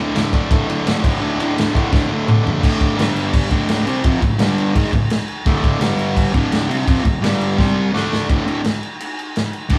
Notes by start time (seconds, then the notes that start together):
Already playing: D2
0.00 A2 D3
0.15 D2 A2 D3, snare, ride
0.33 D2 A2 D3, kick, ride
0.51 D2 A2 D3, kick, ride
0.68 D2 A2 D3, ride
0.86 D2 A2 D3, snare, ride
1.02 D2 A2 D3, kick, crash
1.20 D2 A2 D3
1.39 D2 A2 D3, ride
1.57 D2 A2 D3, snare, ride
1.74 D2 A2 D3, kick, ride
1.92 D2 A2 D3, kick, snare
2.09 D2 A2 D3
2.27 D2 A2 D3, mid tom
2.44 D2 A2 D3, floor tom
2.62 D2 A2 D3, kick, crash
2.81 kick, crash
2.98 G2 D3 G3, snare, crash
3.16 crash
3.34 kick, crash
3.51 D2 A2 D3, kick, crash
3.69 snare, crash
3.86 C3 G3 C4, crash
4.04 F2 C3 F3, kick, crash
4.21 D2 A2, kick, crash
4.38 G2 D3 G3, snare, crash
4.58 crash
4.75 G#2 D#3 G#3, kick, crash
4.86 snare
4.92 D2 A2, kick, crash
5.10 snare, crash
5.28 crash
5.46 D2 A2 D3, kick, crash
5.64 kick, crash
5.80 G2 D3 G3, snare, crash
5.99 crash
6.17 kick, crash
6.34 D2 A2 D3, kick, crash
6.52 snare, crash
6.69 C3 G3 C4, crash
6.86 F2 C3 F3, kick, crash
7.04 D2 A2, kick, crash
7.22 G2 D3 G3, snare, crash
7.41 crash
7.58 C3 G3 C4, kick, snare
7.93 D3 A3 D4, snare
8.13 snare
8.29 D2 A2 D3, kick, crash
8.45 D2 A2 D3, crash
8.64 snare, crash
8.83 crash
9.00 crash
9.19 crash
9.36 snare, crash
9.53 crash
9.69 D2 A2 D3, kick, crash